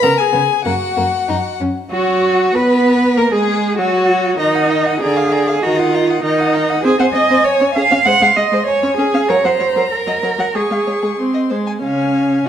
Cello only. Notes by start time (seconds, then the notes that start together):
0.03 C#3
0.34 C#3
0.65 F#2
0.97 F#2
1.29 F#2
1.60 F#2
1.92 F#4
2.56 B4
3.18 A#4
3.33 G#4
3.79 F#4
4.39 D#4
5.02 G#4
5.63 F#4
5.78 F4
6.23 D#4
6.84 G#4
6.99 C5
7.14 D#5
7.45 C#5
7.75 F5
8.06 F#5
8.22 F5
8.36 D#5
8.67 C#5
8.98 G#4
9.29 C#5
9.45 C5
9.92 A#4
10.55 G#4
11.83 C#3